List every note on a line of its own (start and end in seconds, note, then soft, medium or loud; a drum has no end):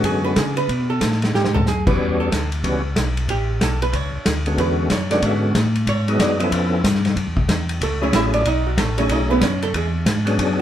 0.00 0.36 F#2 medium
0.00 0.34 D3 medium
0.00 0.35 G#3 medium
0.00 0.35 B3 medium
0.00 0.35 C#4 medium
0.00 0.35 F#4 medium
0.00 kick soft
0.00 ride medium
0.05 0.24 G#4 medium
0.24 0.36 B4 medium
0.36 0.68 C#3 medium
0.36 0.57 G#4 medium
0.36 kick soft
0.36 snare medium
0.36 hi-hat pedal soft
0.36 ride medium
0.57 0.87 B4 loud
0.57 ride soft
0.69 1.01 B2 medium
0.69 kick soft
0.69 ride medium
0.90 1.20 A4 medium
1.01 1.33 A2 medium
1.01 kick soft
1.01 snare medium
1.01 hi-hat pedal medium
1.01 ride medium
1.12 snare soft
1.22 snare soft
1.22 ride soft
1.34 1.66 G#2 medium
1.34 1.54 G4 medium
1.34 snare soft
1.44 snare medium
1.54 1.66 A4 loud
1.54 floor tom medium
1.66 1.99 F#2 medium
1.66 1.87 G#4 medium
1.66 snare soft
1.66 hi-hat pedal medium
1.87 2.29 E3 medium
1.87 2.29 G3 medium
1.87 2.29 B3 medium
1.87 2.30 C#4 medium
1.87 2.30 F#4 medium
1.87 2.17 B4 medium
1.87 kick medium
1.87 crash medium
1.99 2.30 E2 medium
1.99 kick soft
2.20 2.50 A4 medium
2.31 2.63 D2 medium
2.31 kick soft
2.31 snare medium
2.31 hi-hat pedal medium
2.31 ride medium
2.52 ride soft
2.64 2.95 C#2 medium
2.64 2.82 E3 medium
2.64 2.82 G3 medium
2.64 2.83 B3 medium
2.64 2.83 C#4 medium
2.64 2.83 F#4 medium
2.64 kick soft
2.64 ride medium
2.96 3.28 B1 medium
2.96 kick soft
2.96 snare medium
2.96 hi-hat pedal medium
2.96 ride medium
3.17 ride soft
3.28 3.60 A1 medium
3.28 3.60 G4 medium
3.28 kick soft
3.28 ride medium
3.61 3.93 B1 medium
3.61 3.82 A4 medium
3.61 kick soft
3.61 snare medium
3.61 hi-hat pedal medium
3.61 ride medium
3.82 3.95 B4 medium
3.82 ride soft
3.93 4.11 C#2 medium
3.93 4.27 C#5 medium
3.93 kick soft
3.93 ride medium
4.12 4.19 C#2 soft
4.25 4.57 D2 medium
4.25 kick soft
4.25 snare medium
4.25 hi-hat pedal medium
4.25 ride medium
4.46 4.88 D3 medium
4.46 4.89 G#3 medium
4.46 4.88 B3 medium
4.46 4.89 C#4 medium
4.46 4.89 F#4 medium
4.46 ride soft
4.58 4.89 E2 medium
4.58 4.89 B4 medium
4.58 kick soft
4.58 ride medium
4.90 5.22 F#2 medium
4.90 5.11 C#5 medium
4.90 kick soft
4.90 snare medium
4.90 hi-hat pedal medium
4.90 ride medium
5.11 5.53 D3 medium
5.11 5.53 G#3 medium
5.11 5.53 B3 medium
5.11 5.53 C#4 medium
5.11 5.53 F#4 medium
5.11 5.25 D5 medium
5.11 snare soft
5.11 ride medium
5.22 5.54 G#2 medium
5.22 5.56 E5 medium
5.22 kick soft
5.22 ride medium
5.55 5.86 A2 medium
5.55 kick soft
5.55 snare medium
5.55 hi-hat pedal medium
5.55 ride medium
5.75 ride soft
5.86 6.18 G#2 medium
5.86 6.18 C#5 medium
5.86 kick soft
5.86 ride medium
6.08 6.38 F#3 medium
6.08 6.38 G#3 medium
6.08 6.38 B3 medium
6.08 6.38 D#4 medium
6.08 6.38 G#4 medium
6.08 ride soft
6.19 6.51 F#2 medium
6.19 6.39 D5 medium
6.19 kick soft
6.19 snare medium
6.19 hi-hat pedal medium
6.19 ride medium
6.39 6.82 F3 medium
6.39 6.82 B3 medium
6.39 6.82 C#4 medium
6.39 6.82 E4 medium
6.39 6.82 A4 medium
6.39 6.52 D#5 medium
6.39 ride medium
6.51 6.83 F2 medium
6.51 6.84 F5 medium
6.51 kick soft
6.51 ride medium
6.84 7.15 G2 medium
6.84 kick soft
6.84 snare medium
6.84 hi-hat pedal medium
6.84 ride medium
6.95 snare soft
7.05 snare soft
7.05 ride soft
7.16 7.27 F#2 medium
7.16 kick soft
7.16 ride medium
7.27 7.38 E2 medium
7.37 7.48 C#2 medium
7.37 kick soft
7.48 7.80 E2 medium
7.48 kick soft
7.48 snare medium
7.48 hi-hat pedal medium
7.48 ride medium
7.69 ride medium
7.81 8.13 C#2 medium
7.81 8.02 A3 medium
7.81 8.02 A4 medium
7.81 kick soft
7.81 ride medium
8.01 8.43 F#3 medium
8.01 8.44 A3 medium
8.01 8.44 C#4 medium
8.01 8.14 C#4 medium
8.01 8.44 E4 medium
8.01 8.44 G#4 medium
8.01 8.14 C#5 medium
8.13 8.45 A1 loud
8.13 8.34 E4 medium
8.13 8.34 E5 loud
8.13 kick soft
8.13 snare medium
8.13 hi-hat pedal soft
8.13 ride medium
8.33 8.46 D4 medium
8.33 8.45 D5 medium
8.33 ride soft
8.45 8.77 B1 medium
8.45 8.66 D#4 medium
8.45 8.66 D#5 medium
8.45 kick soft
8.45 ride medium
8.67 8.78 F#3 soft
8.67 8.78 F#4 medium
8.77 9.09 A1 medium
8.77 8.99 A3 medium
8.77 8.98 A4 medium
8.77 kick soft
8.77 snare medium
8.77 hi-hat pedal medium
8.77 ride medium
8.98 9.40 F#3 medium
8.98 9.40 A3 medium
8.98 9.10 C#4 medium
8.98 9.40 C#4 medium
8.98 9.41 D#4 medium
8.98 9.41 G#4 medium
8.98 9.10 C#5 medium
8.98 ride medium
9.09 9.41 B1 medium
9.09 9.31 D#4 medium
9.09 9.31 D#5 medium
9.09 kick soft
9.09 ride medium
9.30 9.42 B3 medium
9.30 9.42 B4 loud
9.41 9.73 F#2 medium
9.41 9.63 C#4 medium
9.41 9.62 C#5 loud
9.41 kick soft
9.41 snare medium
9.41 hi-hat pedal medium
9.41 ride medium
9.62 9.75 A3 medium
9.62 9.75 A4 loud
9.62 ride soft
9.74 10.06 E2 medium
9.74 9.88 G#3 medium
9.74 9.88 G#4 medium
9.74 kick soft
9.74 ride medium
10.06 10.38 G#2 medium
10.06 kick soft
10.06 snare medium
10.06 hi-hat pedal medium
10.06 ride medium
10.25 10.62 F#3 medium
10.25 10.62 B3 medium
10.25 10.62 C#4 medium
10.25 10.62 D4 medium
10.25 10.62 G#4 medium
10.25 ride medium
10.38 10.62 F#2 medium
10.38 kick soft
10.38 ride medium